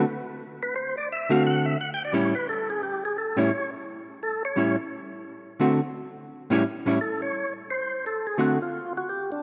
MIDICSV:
0, 0, Header, 1, 3, 480
1, 0, Start_track
1, 0, Tempo, 347222
1, 1020, Time_signature, 4, 2, 24, 8
1, 13031, End_track
2, 0, Start_track
2, 0, Title_t, "Tonewheel organ"
2, 0, Program_c, 0, 16
2, 866, Note_on_c, 0, 71, 98
2, 1028, Note_off_c, 0, 71, 0
2, 1045, Note_on_c, 0, 72, 86
2, 1324, Note_off_c, 0, 72, 0
2, 1344, Note_on_c, 0, 74, 100
2, 1507, Note_off_c, 0, 74, 0
2, 1553, Note_on_c, 0, 76, 101
2, 1819, Note_off_c, 0, 76, 0
2, 1819, Note_on_c, 0, 77, 104
2, 1984, Note_off_c, 0, 77, 0
2, 2028, Note_on_c, 0, 78, 107
2, 2288, Note_on_c, 0, 76, 95
2, 2296, Note_off_c, 0, 78, 0
2, 2458, Note_off_c, 0, 76, 0
2, 2500, Note_on_c, 0, 78, 93
2, 2636, Note_off_c, 0, 78, 0
2, 2680, Note_on_c, 0, 79, 104
2, 2806, Note_off_c, 0, 79, 0
2, 2828, Note_on_c, 0, 74, 101
2, 2960, Note_off_c, 0, 74, 0
2, 2970, Note_on_c, 0, 73, 91
2, 3246, Note_off_c, 0, 73, 0
2, 3249, Note_on_c, 0, 71, 93
2, 3419, Note_off_c, 0, 71, 0
2, 3443, Note_on_c, 0, 69, 99
2, 3723, Note_off_c, 0, 69, 0
2, 3732, Note_on_c, 0, 68, 95
2, 3900, Note_off_c, 0, 68, 0
2, 3913, Note_on_c, 0, 67, 84
2, 4198, Note_off_c, 0, 67, 0
2, 4219, Note_on_c, 0, 68, 96
2, 4384, Note_off_c, 0, 68, 0
2, 4398, Note_on_c, 0, 69, 94
2, 4678, Note_on_c, 0, 73, 100
2, 4680, Note_off_c, 0, 69, 0
2, 5125, Note_off_c, 0, 73, 0
2, 5846, Note_on_c, 0, 69, 95
2, 6124, Note_off_c, 0, 69, 0
2, 6152, Note_on_c, 0, 73, 108
2, 6583, Note_off_c, 0, 73, 0
2, 9692, Note_on_c, 0, 69, 78
2, 9966, Note_off_c, 0, 69, 0
2, 9984, Note_on_c, 0, 73, 99
2, 10417, Note_off_c, 0, 73, 0
2, 10651, Note_on_c, 0, 72, 101
2, 11127, Note_off_c, 0, 72, 0
2, 11146, Note_on_c, 0, 69, 94
2, 11430, Note_off_c, 0, 69, 0
2, 11430, Note_on_c, 0, 68, 84
2, 11582, Note_off_c, 0, 68, 0
2, 11622, Note_on_c, 0, 66, 87
2, 11880, Note_off_c, 0, 66, 0
2, 11918, Note_on_c, 0, 65, 78
2, 12345, Note_off_c, 0, 65, 0
2, 12406, Note_on_c, 0, 66, 89
2, 12566, Note_off_c, 0, 66, 0
2, 12572, Note_on_c, 0, 67, 84
2, 12863, Note_off_c, 0, 67, 0
2, 12881, Note_on_c, 0, 62, 85
2, 13031, Note_off_c, 0, 62, 0
2, 13031, End_track
3, 0, Start_track
3, 0, Title_t, "Hollow-body jazz guitar"
3, 0, Program_c, 1, 26
3, 1790, Note_on_c, 1, 50, 62
3, 1799, Note_on_c, 1, 57, 63
3, 1803, Note_on_c, 1, 60, 62
3, 1809, Note_on_c, 1, 66, 75
3, 2419, Note_off_c, 1, 50, 0
3, 2424, Note_off_c, 1, 57, 0
3, 2426, Note_off_c, 1, 60, 0
3, 2428, Note_off_c, 1, 66, 0
3, 2941, Note_on_c, 1, 45, 59
3, 2949, Note_on_c, 1, 55, 67
3, 2958, Note_on_c, 1, 61, 67
3, 2963, Note_on_c, 1, 64, 66
3, 3210, Note_off_c, 1, 45, 0
3, 3214, Note_off_c, 1, 55, 0
3, 3219, Note_off_c, 1, 61, 0
3, 3221, Note_off_c, 1, 64, 0
3, 4653, Note_on_c, 1, 45, 74
3, 4660, Note_on_c, 1, 55, 63
3, 4664, Note_on_c, 1, 61, 77
3, 4681, Note_on_c, 1, 64, 73
3, 4828, Note_off_c, 1, 45, 0
3, 4831, Note_off_c, 1, 55, 0
3, 4833, Note_off_c, 1, 61, 0
3, 4842, Note_off_c, 1, 64, 0
3, 6303, Note_on_c, 1, 55, 58
3, 6307, Note_on_c, 1, 45, 59
3, 6319, Note_on_c, 1, 61, 67
3, 6330, Note_on_c, 1, 64, 64
3, 6571, Note_off_c, 1, 55, 0
3, 6573, Note_off_c, 1, 45, 0
3, 6579, Note_off_c, 1, 61, 0
3, 6584, Note_off_c, 1, 64, 0
3, 7736, Note_on_c, 1, 50, 67
3, 7747, Note_on_c, 1, 57, 70
3, 7754, Note_on_c, 1, 60, 76
3, 7754, Note_on_c, 1, 66, 72
3, 8007, Note_off_c, 1, 50, 0
3, 8012, Note_off_c, 1, 57, 0
3, 8016, Note_off_c, 1, 60, 0
3, 8016, Note_off_c, 1, 66, 0
3, 8988, Note_on_c, 1, 45, 97
3, 9002, Note_on_c, 1, 55, 80
3, 9008, Note_on_c, 1, 61, 97
3, 9011, Note_on_c, 1, 64, 96
3, 9154, Note_off_c, 1, 45, 0
3, 9161, Note_off_c, 1, 55, 0
3, 9164, Note_off_c, 1, 61, 0
3, 9166, Note_off_c, 1, 64, 0
3, 9483, Note_on_c, 1, 45, 69
3, 9485, Note_on_c, 1, 55, 63
3, 9500, Note_on_c, 1, 61, 76
3, 9507, Note_on_c, 1, 64, 71
3, 9642, Note_off_c, 1, 45, 0
3, 9642, Note_off_c, 1, 55, 0
3, 9650, Note_off_c, 1, 61, 0
3, 9654, Note_off_c, 1, 64, 0
3, 11582, Note_on_c, 1, 50, 55
3, 11587, Note_on_c, 1, 57, 60
3, 11594, Note_on_c, 1, 66, 66
3, 11596, Note_on_c, 1, 60, 65
3, 11850, Note_off_c, 1, 50, 0
3, 11852, Note_off_c, 1, 57, 0
3, 11856, Note_off_c, 1, 60, 0
3, 11856, Note_off_c, 1, 66, 0
3, 13031, End_track
0, 0, End_of_file